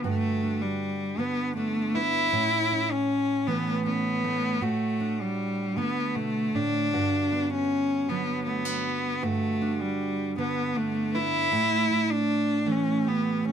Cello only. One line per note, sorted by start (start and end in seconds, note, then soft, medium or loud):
0.05 0.63 A3 medium
0.61 1.21 G3 medium
1.20 1.55 B3 medium
1.56 1.96 A3 medium
1.95 2.93 E4 medium
2.92 3.49 C#4 medium
3.47 3.85 B3 medium
3.86 4.65 B3 medium
4.63 5.23 A3 medium
5.21 5.79 G3 medium
5.78 6.17 B3 medium
6.15 6.56 A3 medium
6.55 7.52 D4 medium
7.50 8.10 C#4 medium
8.09 8.45 B3 medium
8.46 9.24 B3 medium
9.23 9.82 A3 medium
9.81 10.37 G3 medium
10.39 10.78 B3 medium
10.76 11.17 A3 medium
11.15 12.12 E4 medium
12.11 12.73 D4 medium
12.71 13.09 C#4 medium
13.08 13.46 B3 medium
13.45 13.52 C#4 medium